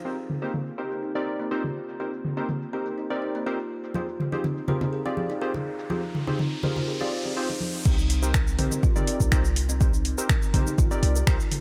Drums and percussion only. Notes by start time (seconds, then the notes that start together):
0.06 cabasa
0.18 cabasa
0.30 mid tom
0.43 cabasa
0.54 mid tom, cabasa
0.67 cabasa
0.91 cabasa
1.03 cabasa
1.16 cabasa
1.40 cabasa
1.52 cabasa
1.64 mid tom, cabasa
1.89 cabasa
2.00 cabasa
2.13 cabasa
2.25 mid tom
2.38 cabasa
2.49 mid tom, cabasa
2.62 cabasa
2.86 cabasa
2.98 cabasa
3.11 cabasa
3.35 cabasa
3.47 cabasa
3.60 cabasa
3.84 cabasa
3.94 muted conga, high conga, cabasa
4.08 cabasa
4.20 mid tom, muted conga
4.32 high conga, cabasa
4.44 mid tom, muted conga, cabasa
4.57 cabasa
4.68 muted conga, high conga, low conga
4.81 low conga, cabasa
4.93 cabasa
5.06 muted conga, cabasa
5.17 high conga
5.29 muted conga, cabasa
5.42 cabasa
5.54 mid tom, muted conga, high conga, cabasa
5.79 cabasa
5.90 muted conga, high conga, cabasa
6.03 cabasa
6.15 mid tom, muted conga
6.27 low conga, cabasa
6.39 mid tom, muted conga, cabasa
6.52 cabasa
6.63 muted conga, high conga, low conga
6.76 low conga, cabasa
6.88 cabasa
7.01 muted conga, cabasa
7.25 muted conga, cabasa
7.37 cabasa
7.50 muted conga, cabasa
7.60 high conga
7.74 cabasa
7.85 kick, crash, cabasa
7.99 cabasa
8.10 open hi-hat
8.23 cabasa
8.34 finger snap, kick, cabasa
8.47 cabasa
8.59 open hi-hat, mid tom
8.71 mid tom, cabasa
8.83 kick, cabasa
8.96 mid tom, cabasa
9.07 open hi-hat
9.20 kick, cabasa
9.32 finger snap, kick, cabasa
9.45 cabasa
9.56 open hi-hat
9.69 cabasa
9.81 kick, cabasa
9.94 cabasa
10.05 open hi-hat
10.18 cabasa
10.29 finger snap, kick, cabasa
10.43 cabasa
10.54 open hi-hat, mid tom
10.67 mid tom, cabasa
10.78 kick, cabasa
10.91 cabasa
11.03 open hi-hat
11.16 cabasa
11.27 finger snap, kick, cabasa
11.40 cabasa
11.52 open hi-hat, mid tom